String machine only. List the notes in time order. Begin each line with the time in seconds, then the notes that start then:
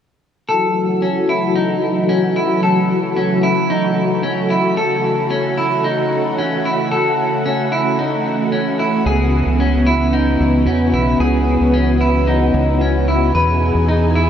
0.49 C#3 E3 F#3 A3 F#4
4.77 E3
9.06 B3
13.34 B2 E3 D#4 G#4